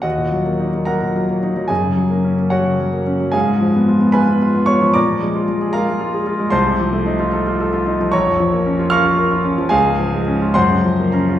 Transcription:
<<
  \new Staff \with { instrumentName = "Grand piano" } { \time 6/8 \key ees \minor \tempo 4. = 74 <ges' ees'' ges''>4. <bes' ges'' bes''>4. | <aes' aes''>4. <ges' des'' ges''>4. | <aes' f'' aes''>4. <ces'' aes'' ces'''>4 <des'' des'''>8 | <d'' bes'' d'''>4. <bes' f'' bes''>4. |
\key bes \minor <c'' a'' c'''>2. | <des'' bes'' des'''>4. <f'' des''' f'''>4. | <aes' f'' aes''>4. <c'' ges'' c'''>4 <bes' bes''>8 | }
  \new Staff \with { instrumentName = "Grand piano" } { \time 6/8 \key ees \minor ees,16 bes,16 ges16 bes16 ees'16 bes16 ges16 bes,16 ges16 bes16 ees'16 ges16 | ges,16 des16 ges16 bes16 des'16 bes16 ges16 des16 ges16 bes16 des'16 ges16 | aes,16 aes16 f16 ces'16 f'16 ces'16 f'16 ces'16 f'16 ces'16 f'16 f16 | bes,16 f16 aes16 f'16 aes16 aes'16 f'16 aes16 f'16 aes'16 f'16 aes16 |
\key bes \minor c,16 c16 f16 a16 ees'16 f'16 a'16 f'16 a'16 f'16 ees'16 f16 | bes,,16 f,16 f16 bes16 des'16 f'16 bes'16 f'16 bes'16 f'16 des'16 f16 | des,16 aes,16 f16 aes16 des'16 f'16 ges,16 des16 f16 bes16 des'16 f'16 | }
>>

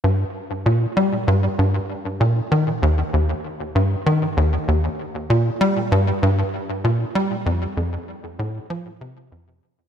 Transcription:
\new Staff \with { instrumentName = "Analog synth bass" } { \clef bass \time 4/4 \key g \minor \tempo 4 = 97 g,8 r8 bes,8 g8 g,8 g,8 r8 bes,8 | ees8 ees,8 ees,8 r8 g,8 ees8 ees,8 ees,8 | r8 bes,8 g8 g,8 g,8 r8 bes,8 g8 | f,8 f,8 r8 a,8 f8 c8 f,8 r8 | }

